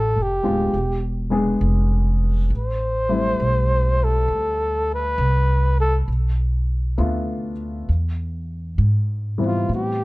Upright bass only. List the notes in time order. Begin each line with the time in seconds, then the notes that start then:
Already playing: A1
0.16 F1
0.45 D1
0.74 E1
1.61 F1
2.50 A1
3.40 B1
4.28 D2
5.18 C2
6.08 B1
6.98 D2
7.89 E2
8.78 G#2
9.69 A2